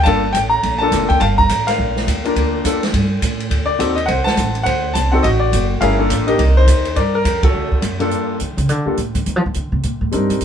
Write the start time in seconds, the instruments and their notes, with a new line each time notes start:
0.03 upright bass G1, grand piano A#3 D4 F4 A4 F5 A5, kick, ride
0.33 upright bass A1, grand piano G5, kick, hi-hat pedal, ride
0.50 grand piano A#5
0.63 upright bass A#1, kick, ride
0.78 grand piano A#3 D4 A5
0.83 grand piano F4 A4
0.92 upright bass F1, kick, snare, hi-hat pedal, ride
1.09 grand piano G5, kick, ride
1.20 upright bass G1, grand piano F5 A5, kick, ride
1.38 grand piano A#5, kick
1.49 upright bass A1, kick, hi-hat pedal, ride
1.67 grand piano A#4 F5, snare, ride
1.78 upright bass A#1, kick
1.96 snare
2.07 upright bass D#2, kick, hi-hat pedal, ride
2.25 grand piano A#3 D4 F4 A#4, ride
2.36 upright bass D2, kick, ride
2.64 upright bass F2, grand piano A#3 D4 F4 A4, kick, hi-hat pedal, ride
2.83 snare, ride
2.93 upright bass G2, kick, ride
3.22 upright bass A2, kick, hi-hat pedal, ride
3.40 ride
3.50 upright bass D2, kick, ride
3.66 grand piano D5
3.79 upright bass D#2, grand piano C4 D#4 F#4 A4, kick, hi-hat pedal, ride
3.95 grand piano D#5, ride
4.06 upright bass C2, grand piano C5 F#5, kick, ride
4.24 grand piano F#5 A5, muted upright bass stroke, snare
4.37 upright bass A1, kick, hi-hat pedal, ride
4.55 ride
4.63 upright bass D2, grand piano C5 F#5, kick, ride
4.94 upright bass C2, grand piano A5, kick, hi-hat pedal, ride
5.12 grand piano C4 D#4 F#4 A4 F#5
5.23 upright bass A1, grand piano F#4 D#5, kick, ride
5.40 grand piano D5
5.52 upright bass F#1, kick, hi-hat pedal, ride
5.81 upright bass G1, grand piano A3 C#4 E4 G#4 A#4 F5, kick, ride
5.98 grand piano A#3 D4 F4 A4
6.10 upright bass A1, kick, hi-hat pedal, ride
6.27 grand piano A#3 D4 D#4 G4 A#4 D#5, ride
6.39 upright bass C2, kick, ride
6.57 grand piano D#4 C5
6.67 upright bass D#2, kick, hi-hat pedal, ride
6.85 ride
6.96 upright bass G2, grand piano A#4 D5, kick, ride
7.15 grand piano A#4
7.25 upright bass F2, kick, hi-hat pedal, ride
7.43 grand piano F#4 A4, kick, ride
7.54 upright bass D2
7.72 muted upright bass stroke, kick
7.82 upright bass F#2, kick, hi-hat pedal, ride
8.00 grand piano G2 A#3 D4 F4 A4, ride
8.11 closed hi-hat
8.40 upright bass D#3, closed hi-hat
8.57 upright bass C#3, closed hi-hat
8.69 upright bass D3, closed hi-hat
8.86 upright bass F2, grand piano G3 A#3 D4 F4 A4
8.97 upright bass A2, closed hi-hat
9.15 upright bass D3, closed hi-hat
9.26 upright bass D#3, closed hi-hat
9.36 upright bass F3
9.46 upright bass D#3
9.54 upright bass D3, closed hi-hat
9.72 upright bass C3
9.83 upright bass A#2, closed hi-hat
10.01 upright bass A2
10.12 upright bass G2, grand piano G3 C4 D4 D#4 A#4, closed hi-hat
10.29 upright bass F#2, closed hi-hat
10.41 upright bass F2, closed hi-hat